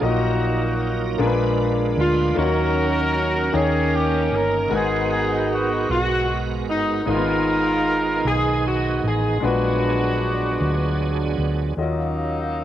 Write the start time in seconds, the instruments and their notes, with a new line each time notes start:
0.01 fingered electric bass A#1, grand piano A#2 A#3 D#4 F#4 D#5, tonewheel organ F#3 A#3 D#4 A#4, horn section A#3
0.06 horn section D#4 F#4
1.18 fingered electric bass A#1, grand piano A#2 A#3 D4 G#4 A#4, tonewheel organ G#3 A#3 D4 B4
1.26 grand piano B4
1.97 fingered electric bass D2, horn section F4
2.34 fingered electric bass D#2, grand piano D#3 A#3 D#4 F4 C#5, tonewheel organ F#3 C#4 D#4 A4, horn section A#4
2.38 horn section C#4 F#4, grand piano F#4
2.43 tonewheel organ A#4
3.52 fingered electric bass D#2, grand piano D#3 A#3 D#4 C#5 G5, tonewheel organ A#3 C#4 D#4 A4
3.56 horn section C#4 G#4, tonewheel organ A#4
3.95 horn section G4
4.32 fingered electric bass G1, horn section A#4
4.69 fingered electric bass G#1, grand piano G#2 G#3 B3 F#4 A#4, tonewheel organ G#3 B3 F#4 G#4
4.74 horn section B3 D#4 G#4, tonewheel organ A#4
5.10 horn section G#4
5.52 horn section F#4
5.89 fingered electric bass B1, horn section F#4
6.68 fingered electric bass G1, horn section D#4
7.06 fingered electric bass G#1, grand piano G#2 G#3 D#4 A#4 F5, tonewheel organ D#3 B3 D#4 G#4, horn section D#4 A#4
7.10 horn section F4
7.16 grand piano B3
8.25 fingered electric bass B1, horn section G#4
8.67 horn section F#4
9.04 fingered electric bass A1
9.08 horn section G#4
9.40 fingered electric bass A#1, grand piano A#2 G#3 D4 F#4, tonewheel organ F#3 B3 D4 G#4
9.44 horn section B3 D4 F#4, grand piano B4
10.61 fingered electric bass D2
11.38 fingered electric bass D2
11.77 fingered electric bass D#2, grand piano D#3 C#4 F4 F#4 D#5, french horn section F#3 C#4 D#4 F5
11.81 horn section F#3 A#3 D#4